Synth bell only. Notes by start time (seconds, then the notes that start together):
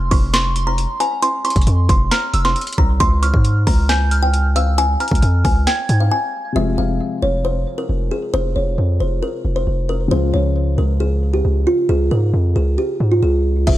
Already playing: C6
0.34 C#6
0.56 C6
1.00 A#5
1.45 C6
2.11 F6
2.34 E6
3.23 F6
3.89 G6
4.11 F6
4.56 E6
5.00 F6
5.67 G#6